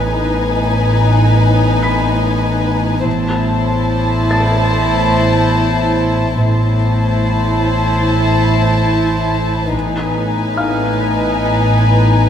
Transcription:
0, 0, Header, 1, 7, 480
1, 0, Start_track
1, 0, Tempo, 829876
1, 1768, Time_signature, 4, 2, 24, 8
1, 3689, Tempo, 841515
1, 7062, End_track
2, 0, Start_track
2, 0, Title_t, "Felt piano"
2, 0, Program_c, 0, 0
2, 0, Control_c, 0, 64, 127
2, 0, Note_on_c, 0, 92, 31
2, 1026, Note_off_c, 0, 92, 0
2, 1057, Note_on_c, 0, 95, 31
2, 1058, Note_on_c, 0, 83, 31
2, 1779, Control_c, 0, 64, 0
2, 1880, Control_c, 0, 64, 127
2, 2468, Note_off_c, 0, 83, 0
2, 2468, Note_off_c, 0, 95, 0
2, 2491, Note_on_c, 0, 93, 37
2, 2492, Note_on_c, 0, 81, 28
2, 3907, Note_off_c, 0, 81, 0
2, 3907, Note_off_c, 0, 93, 0
2, 5614, Control_c, 0, 64, 0
2, 5718, Control_c, 0, 64, 127
2, 6082, Note_on_c, 0, 77, 23
2, 6083, Note_on_c, 0, 89, 29
2, 7062, Note_off_c, 0, 77, 0
2, 7062, Note_off_c, 0, 89, 0
2, 7062, End_track
3, 0, Start_track
3, 0, Title_t, "Violin section"
3, 0, Program_c, 1, 48
3, 0, Note_on_c, 1, 80, 43
3, 1745, Note_off_c, 1, 80, 0
3, 1770, Note_on_c, 1, 81, 48
3, 3667, Note_off_c, 1, 81, 0
3, 3689, Note_on_c, 1, 81, 46
3, 5580, Note_off_c, 1, 81, 0
3, 5606, Note_on_c, 1, 80, 41
3, 7062, Note_off_c, 1, 80, 0
3, 7062, End_track
4, 0, Start_track
4, 0, Title_t, "Violin section"
4, 0, Program_c, 2, 48
4, 0, Note_on_c, 2, 63, 40
4, 0, Note_on_c, 2, 71, 40
4, 1746, Note_off_c, 2, 63, 0
4, 1746, Note_off_c, 2, 71, 0
4, 1761, Note_on_c, 2, 72, 47
4, 1764, Note_on_c, 2, 64, 47
4, 3662, Note_off_c, 2, 72, 0
4, 3664, Note_off_c, 2, 64, 0
4, 3691, Note_on_c, 2, 64, 46
4, 3691, Note_on_c, 2, 72, 43
4, 5581, Note_off_c, 2, 64, 0
4, 5581, Note_off_c, 2, 72, 0
4, 5595, Note_on_c, 2, 63, 39
4, 5596, Note_on_c, 2, 71, 40
4, 7062, Note_off_c, 2, 63, 0
4, 7062, Note_off_c, 2, 71, 0
4, 7062, End_track
5, 0, Start_track
5, 0, Title_t, "Cello section"
5, 0, Program_c, 3, 48
5, 0, Note_on_c, 3, 45, 42
5, 1745, Note_off_c, 3, 45, 0
5, 1768, Note_on_c, 3, 45, 45
5, 3666, Note_off_c, 3, 45, 0
5, 3694, Note_on_c, 3, 45, 42
5, 5583, Note_off_c, 3, 45, 0
5, 5602, Note_on_c, 3, 45, 39
5, 7062, Note_off_c, 3, 45, 0
5, 7062, End_track
6, 0, Start_track
6, 0, Title_t, "Double bass section"
6, 0, Program_c, 4, 48
6, 0, Note_on_c, 4, 33, 45
6, 303, Note_off_c, 4, 33, 0
6, 1765, Note_on_c, 4, 33, 44
6, 2223, Note_off_c, 4, 33, 0
6, 3688, Note_on_c, 4, 33, 40
6, 4144, Note_off_c, 4, 33, 0
6, 5601, Note_on_c, 4, 33, 34
6, 6058, Note_off_c, 4, 33, 0
6, 7062, End_track
7, 0, Start_track
7, 0, Title_t, "Synth drone"
7, 0, Program_c, 5, 95
7, 0, Note_on_c, 5, 33, 62
7, 1742, Note_off_c, 5, 33, 0
7, 1763, Note_on_c, 5, 33, 63
7, 3663, Note_off_c, 5, 33, 0
7, 3688, Note_on_c, 5, 33, 61
7, 5580, Note_off_c, 5, 33, 0
7, 5597, Note_on_c, 5, 33, 62
7, 7062, Note_off_c, 5, 33, 0
7, 7062, End_track
0, 0, End_of_file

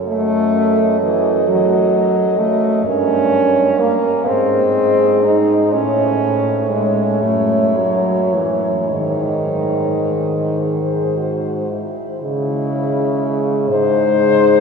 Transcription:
0, 0, Header, 1, 5, 480
1, 0, Start_track
1, 0, Tempo, 925926
1, 40, Time_signature, 6, 3, 24, 8
1, 1960, Tempo, 970874
1, 3400, Tempo, 1071429
1, 3880, Tempo, 1125704
1, 5320, Tempo, 1071429
1, 5800, Tempo, 975610
1, 6975, End_track
2, 0, Start_track
2, 0, Title_t, "French horn"
2, 0, Program_c, 0, 60
2, 48, Note_on_c, 0, 75, 55
2, 1475, Note_on_c, 0, 73, 48
2, 1482, Note_off_c, 0, 75, 0
2, 2195, Note_off_c, 0, 73, 0
2, 2198, Note_on_c, 0, 75, 52
2, 2922, Note_on_c, 0, 73, 47
2, 2929, Note_off_c, 0, 75, 0
2, 4946, Note_off_c, 0, 73, 0
2, 5080, Note_on_c, 0, 72, 37
2, 5632, Note_off_c, 0, 72, 0
2, 6531, Note_on_c, 0, 72, 87
2, 6975, Note_off_c, 0, 72, 0
2, 6975, End_track
3, 0, Start_track
3, 0, Title_t, "French horn"
3, 0, Program_c, 1, 60
3, 0, Note_on_c, 1, 69, 53
3, 1483, Note_on_c, 1, 70, 51
3, 1490, Note_off_c, 1, 69, 0
3, 2066, Note_off_c, 1, 70, 0
3, 2197, Note_on_c, 1, 68, 57
3, 2898, Note_off_c, 1, 68, 0
3, 2921, Note_on_c, 1, 64, 55
3, 4358, Note_on_c, 1, 63, 48
3, 4364, Note_off_c, 1, 64, 0
3, 5034, Note_off_c, 1, 63, 0
3, 5086, Note_on_c, 1, 68, 50
3, 5331, Note_on_c, 1, 66, 46
3, 5337, Note_off_c, 1, 68, 0
3, 5577, Note_on_c, 1, 64, 43
3, 5583, Note_off_c, 1, 66, 0
3, 5797, Note_off_c, 1, 64, 0
3, 5800, Note_on_c, 1, 56, 68
3, 6975, Note_off_c, 1, 56, 0
3, 6975, End_track
4, 0, Start_track
4, 0, Title_t, "French horn"
4, 0, Program_c, 2, 60
4, 39, Note_on_c, 2, 57, 80
4, 503, Note_off_c, 2, 57, 0
4, 527, Note_on_c, 2, 52, 61
4, 763, Note_on_c, 2, 54, 63
4, 771, Note_off_c, 2, 52, 0
4, 1236, Note_on_c, 2, 57, 67
4, 1244, Note_off_c, 2, 54, 0
4, 1475, Note_off_c, 2, 57, 0
4, 1477, Note_on_c, 2, 61, 86
4, 1967, Note_on_c, 2, 58, 69
4, 1975, Note_off_c, 2, 61, 0
4, 2203, Note_on_c, 2, 60, 75
4, 2211, Note_off_c, 2, 58, 0
4, 2681, Note_on_c, 2, 63, 64
4, 2688, Note_off_c, 2, 60, 0
4, 2920, Note_on_c, 2, 61, 82
4, 2928, Note_off_c, 2, 63, 0
4, 3400, Note_off_c, 2, 61, 0
4, 3402, Note_on_c, 2, 56, 62
4, 3632, Note_on_c, 2, 57, 54
4, 3639, Note_off_c, 2, 56, 0
4, 3881, Note_on_c, 2, 54, 56
4, 3888, Note_off_c, 2, 57, 0
4, 4123, Note_on_c, 2, 52, 54
4, 4129, Note_off_c, 2, 54, 0
4, 4289, Note_off_c, 2, 52, 0
4, 4358, Note_on_c, 2, 51, 63
4, 5550, Note_off_c, 2, 51, 0
4, 5802, Note_on_c, 2, 64, 62
4, 6507, Note_off_c, 2, 64, 0
4, 6523, Note_on_c, 2, 63, 64
4, 6975, Note_off_c, 2, 63, 0
4, 6975, End_track
5, 0, Start_track
5, 0, Title_t, "French horn"
5, 0, Program_c, 3, 60
5, 0, Note_on_c, 3, 42, 48
5, 1453, Note_off_c, 3, 42, 0
5, 1475, Note_on_c, 3, 43, 52
5, 2051, Note_off_c, 3, 43, 0
5, 2207, Note_on_c, 3, 44, 50
5, 2925, Note_on_c, 3, 45, 51
5, 2932, Note_off_c, 3, 44, 0
5, 3636, Note_on_c, 3, 42, 46
5, 3643, Note_off_c, 3, 45, 0
5, 4360, Note_off_c, 3, 42, 0
5, 4363, Note_on_c, 3, 44, 44
5, 5635, Note_off_c, 3, 44, 0
5, 5804, Note_on_c, 3, 49, 61
5, 6525, Note_on_c, 3, 44, 57
5, 6533, Note_off_c, 3, 49, 0
5, 6975, Note_off_c, 3, 44, 0
5, 6975, End_track
0, 0, End_of_file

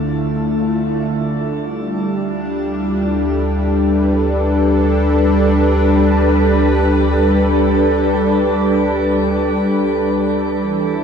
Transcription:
0, 0, Header, 1, 3, 480
1, 0, Start_track
1, 0, Tempo, 500000
1, 10596, End_track
2, 0, Start_track
2, 0, Title_t, "Analog synth pad"
2, 0, Program_c, 0, 89
2, 0, Note_on_c, 0, 50, 72
2, 0, Note_on_c, 0, 57, 69
2, 0, Note_on_c, 0, 64, 66
2, 0, Note_on_c, 0, 65, 71
2, 1528, Note_off_c, 0, 50, 0
2, 1534, Note_off_c, 0, 57, 0
2, 1552, Note_on_c, 0, 55, 78
2, 1977, Note_on_c, 0, 62, 83
2, 2794, Note_on_c, 0, 69, 70
2, 3060, Note_off_c, 0, 65, 0
2, 3465, Note_on_c, 0, 71, 72
2, 3869, Note_off_c, 0, 64, 0
2, 10188, Note_on_c, 0, 52, 66
2, 10196, Note_off_c, 0, 55, 0
2, 10564, Note_on_c, 0, 59, 76
2, 10596, Note_off_c, 0, 52, 0
2, 10596, Note_off_c, 0, 59, 0
2, 10596, Note_off_c, 0, 62, 0
2, 10596, Note_off_c, 0, 69, 0
2, 10596, Note_off_c, 0, 71, 0
2, 10596, End_track
3, 0, Start_track
3, 0, Title_t, "Synth drone"
3, 0, Program_c, 1, 95
3, 0, Note_on_c, 1, 38, 92
3, 1482, Note_off_c, 1, 38, 0
3, 1541, Note_on_c, 1, 38, 88
3, 10137, Note_off_c, 1, 38, 0
3, 10194, Note_on_c, 1, 40, 86
3, 10596, Note_off_c, 1, 40, 0
3, 10596, End_track
0, 0, End_of_file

